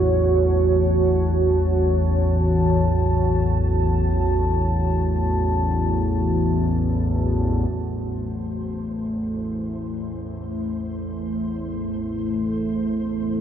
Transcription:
0, 0, Header, 1, 4, 480
1, 0, Start_track
1, 0, Tempo, 500000
1, 12871, End_track
2, 0, Start_track
2, 0, Title_t, "Synth texture"
2, 0, Program_c, 0, 99
2, 7404, Note_on_c, 0, 72, 78
2, 12871, Note_off_c, 0, 72, 0
2, 12871, End_track
3, 0, Start_track
3, 0, Title_t, "Ambient pad"
3, 0, Program_c, 1, 92
3, 0, Note_on_c, 1, 66, 62
3, 0, Note_on_c, 1, 73, 79
3, 0, Note_on_c, 1, 81, 87
3, 7409, Note_off_c, 1, 73, 0
3, 7412, Note_off_c, 1, 66, 0
3, 7413, Note_on_c, 1, 57, 68
3, 8182, Note_on_c, 1, 64, 61
3, 10027, Note_on_c, 1, 69, 66
3, 10823, Note_off_c, 1, 81, 0
3, 12871, Note_off_c, 1, 57, 0
3, 12871, Note_off_c, 1, 64, 0
3, 12871, Note_off_c, 1, 69, 0
3, 12871, End_track
4, 0, Start_track
4, 0, Title_t, "Synth drone"
4, 0, Program_c, 2, 95
4, 0, Note_on_c, 2, 33, 62
4, 0, Note_on_c, 2, 40, 68
4, 7408, Note_off_c, 2, 33, 0
4, 7410, Note_off_c, 2, 40, 0
4, 7419, Note_on_c, 2, 33, 70
4, 7422, Note_on_c, 2, 40, 66
4, 12871, Note_off_c, 2, 33, 0
4, 12871, Note_off_c, 2, 40, 0
4, 12871, End_track
0, 0, End_of_file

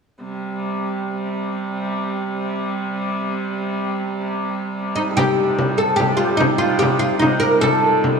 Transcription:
0, 0, Header, 1, 5, 480
1, 0, Start_track
1, 0, Tempo, 410397
1, 276, Time_signature, 3, 2, 24, 8
1, 9588, End_track
2, 0, Start_track
2, 0, Title_t, "Hammered dulcimer"
2, 0, Program_c, 0, 15
2, 5808, Note_on_c, 0, 63, 59
2, 5973, Note_on_c, 0, 69, 55
2, 6043, Note_on_c, 0, 67, 66
2, 6532, Note_off_c, 0, 67, 0
2, 6537, Note_on_c, 0, 67, 58
2, 6747, Note_off_c, 0, 69, 0
2, 6751, Note_on_c, 0, 69, 70
2, 6997, Note_off_c, 0, 67, 0
2, 7001, Note_on_c, 0, 67, 72
2, 7154, Note_off_c, 0, 67, 0
2, 7159, Note_on_c, 0, 67, 63
2, 7310, Note_off_c, 0, 67, 0
2, 7314, Note_on_c, 0, 67, 73
2, 7482, Note_off_c, 0, 63, 0
2, 7487, Note_on_c, 0, 63, 75
2, 7725, Note_on_c, 0, 65, 78
2, 7969, Note_off_c, 0, 67, 0
2, 7974, Note_on_c, 0, 67, 66
2, 8443, Note_off_c, 0, 63, 0
2, 8447, Note_on_c, 0, 63, 76
2, 8694, Note_on_c, 0, 70, 79
2, 8764, Note_off_c, 0, 69, 0
2, 8927, Note_on_c, 0, 69, 79
2, 8997, Note_off_c, 0, 70, 0
2, 9588, Note_off_c, 0, 63, 0
2, 9588, Note_off_c, 0, 65, 0
2, 9588, Note_off_c, 0, 67, 0
2, 9588, Note_off_c, 0, 69, 0
2, 9588, End_track
3, 0, Start_track
3, 0, Title_t, "Oud"
3, 0, Program_c, 1, 24
3, 5796, Note_on_c, 1, 63, 71
3, 5862, Note_off_c, 1, 63, 0
3, 6044, Note_on_c, 1, 67, 92
3, 6715, Note_off_c, 1, 67, 0
3, 6759, Note_on_c, 1, 69, 71
3, 6967, Note_off_c, 1, 69, 0
3, 6972, Note_on_c, 1, 67, 91
3, 7208, Note_off_c, 1, 67, 0
3, 7213, Note_on_c, 1, 65, 78
3, 7449, Note_off_c, 1, 65, 0
3, 7452, Note_on_c, 1, 63, 86
3, 7520, Note_off_c, 1, 63, 0
3, 7700, Note_on_c, 1, 65, 83
3, 7932, Note_off_c, 1, 65, 0
3, 7940, Note_on_c, 1, 67, 88
3, 8007, Note_off_c, 1, 67, 0
3, 8179, Note_on_c, 1, 65, 76
3, 8411, Note_off_c, 1, 65, 0
3, 8414, Note_on_c, 1, 63, 83
3, 8649, Note_off_c, 1, 63, 0
3, 8651, Note_on_c, 1, 70, 93
3, 8900, Note_off_c, 1, 70, 0
3, 8904, Note_on_c, 1, 69, 101
3, 9588, Note_off_c, 1, 69, 0
3, 9588, End_track
4, 0, Start_track
4, 0, Title_t, "Hurdy-gurdy"
4, 0, Program_c, 2, 110
4, 271, Note_on_c, 2, 55, 57
4, 272, Note_on_c, 2, 48, 60
4, 6033, Note_off_c, 2, 48, 0
4, 6033, Note_on_c, 2, 48, 59
4, 6038, Note_off_c, 2, 55, 0
4, 6038, Note_on_c, 2, 55, 60
4, 9588, Note_off_c, 2, 48, 0
4, 9588, Note_off_c, 2, 55, 0
4, 9588, End_track
5, 0, Start_track
5, 0, Title_t, "Frame drum"
5, 6052, Note_on_c, 9, 64, 78
5, 6169, Note_off_c, 9, 64, 0
5, 6532, Note_on_c, 9, 64, 71
5, 6649, Note_off_c, 9, 64, 0
5, 7014, Note_on_c, 9, 64, 77
5, 7131, Note_off_c, 9, 64, 0
5, 7491, Note_on_c, 9, 64, 85
5, 7608, Note_off_c, 9, 64, 0
5, 7978, Note_on_c, 9, 64, 73
5, 8095, Note_off_c, 9, 64, 0
5, 8441, Note_on_c, 9, 64, 77
5, 8558, Note_off_c, 9, 64, 0
5, 8925, Note_on_c, 9, 64, 74
5, 9042, Note_off_c, 9, 64, 0
5, 9403, Note_on_c, 9, 64, 72
5, 9520, Note_off_c, 9, 64, 0
5, 9588, End_track
0, 0, End_of_file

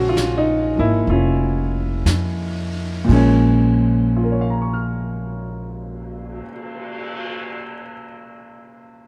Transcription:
0, 0, Header, 1, 5, 480
1, 0, Start_track
1, 0, Key_signature, -5, "minor"
1, 0, Tempo, 917431
1, 567, Tempo, 975610
1, 1047, Tempo, 1060071
1, 1517, Time_signature, 4, 2, 24, 8
1, 4223, End_track
2, 0, Start_track
2, 0, Title_t, "Grand piano"
2, 0, Program_c, 0, 0
2, 0, Control_c, 0, 64, 127
2, 0, Note_on_c, 0, 49, 48
2, 0, Note_on_c, 0, 53, 44
2, 0, Note_on_c, 0, 56, 42
2, 0, Note_on_c, 0, 61, 62
2, 0, Note_on_c, 0, 66, 78
2, 0, Note_on_c, 0, 68, 85
2, 0, Note_on_c, 0, 69, 87
2, 0, Note_on_c, 0, 70, 86
2, 0, Note_on_c, 0, 72, 55
2, 0, Note_on_c, 0, 73, 84
2, 48, Note_on_c, 0, 65, 75
2, 197, Note_on_c, 0, 63, 79
2, 203, Note_off_c, 0, 65, 0
2, 388, Note_off_c, 0, 53, 0
2, 396, Note_on_c, 0, 53, 39
2, 413, Note_on_c, 0, 58, 45
2, 416, Note_on_c, 0, 64, 76
2, 422, Note_off_c, 0, 63, 0
2, 556, Note_off_c, 0, 61, 0
2, 572, Note_off_c, 0, 64, 0
2, 575, Note_on_c, 0, 65, 66
2, 588, Note_on_c, 0, 61, 52
2, 1353, Note_off_c, 0, 65, 0
2, 1494, Note_on_c, 0, 46, 57
2, 1499, Note_off_c, 0, 53, 0
2, 1505, Note_on_c, 0, 53, 53
2, 1506, Note_off_c, 0, 49, 0
2, 1509, Note_off_c, 0, 61, 0
2, 1512, Note_off_c, 0, 56, 0
2, 1519, Note_on_c, 0, 56, 53
2, 1521, Note_off_c, 0, 58, 0
2, 1523, Control_c, 0, 64, 0
2, 1524, Note_off_c, 0, 70, 0
2, 1524, Note_off_c, 0, 73, 0
2, 1527, Note_off_c, 0, 66, 0
2, 1527, Note_off_c, 0, 68, 0
2, 1527, Note_off_c, 0, 69, 0
2, 1529, Note_off_c, 0, 72, 0
2, 1529, Note_on_c, 0, 61, 70
2, 1533, Note_on_c, 0, 58, 55
2, 1538, Note_off_c, 0, 61, 0
2, 1545, Note_on_c, 0, 61, 67
2, 1612, Control_c, 0, 64, 127
2, 2000, Note_on_c, 0, 65, 38
2, 2032, Note_on_c, 0, 70, 38
2, 2070, Note_on_c, 0, 73, 37
2, 2113, Note_on_c, 0, 77, 38
2, 2154, Note_on_c, 0, 82, 35
2, 2205, Note_on_c, 0, 85, 34
2, 2258, Note_on_c, 0, 89, 33
2, 3009, Note_off_c, 0, 46, 0
2, 3021, Note_off_c, 0, 53, 0
2, 3035, Note_off_c, 0, 56, 0
2, 3049, Note_off_c, 0, 58, 0
2, 3061, Note_off_c, 0, 61, 0
2, 3498, Note_off_c, 0, 65, 0
2, 3530, Note_off_c, 0, 70, 0
2, 3567, Note_off_c, 0, 73, 0
2, 3610, Note_off_c, 0, 77, 0
2, 3651, Note_off_c, 0, 82, 0
2, 3703, Note_off_c, 0, 85, 0
2, 3756, Note_off_c, 0, 89, 0
2, 4223, End_track
3, 0, Start_track
3, 0, Title_t, "Upright bass"
3, 0, Program_c, 1, 32
3, 0, Note_on_c, 1, 34, 69
3, 389, Note_off_c, 1, 34, 0
3, 413, Note_on_c, 1, 32, 60
3, 556, Note_off_c, 1, 32, 0
3, 561, Note_on_c, 1, 29, 72
3, 1025, Note_off_c, 1, 29, 0
3, 1044, Note_on_c, 1, 41, 60
3, 1497, Note_off_c, 1, 41, 0
3, 1514, Note_on_c, 1, 34, 75
3, 3012, Note_off_c, 1, 34, 0
3, 4223, End_track
4, 0, Start_track
4, 0, Title_t, "Cymbal swell"
4, 1851, Note_on_c, 9, 59, 41
4, 3352, Note_off_c, 9, 59, 0
4, 4223, End_track
5, 0, Start_track
5, 0, Title_t, "Drums"
5, 88, Note_on_c, 9, 38, 43
5, 88, Note_on_c, 9, 44, 59
5, 140, Note_off_c, 9, 38, 0
5, 140, Note_off_c, 9, 44, 0
5, 568, Note_on_c, 9, 25, 40
5, 1048, Note_on_c, 9, 38, 45
5, 1048, Note_on_c, 9, 44, 61
5, 1093, Note_off_c, 9, 38, 0
5, 1093, Note_off_c, 9, 44, 0
5, 1514, Note_on_c, 9, 36, 51
5, 1514, Note_on_c, 9, 49, 55
5, 1559, Note_off_c, 9, 36, 0
5, 1559, Note_off_c, 9, 49, 0
5, 1910, Note_off_c, 9, 25, 0
5, 4223, End_track
0, 0, End_of_file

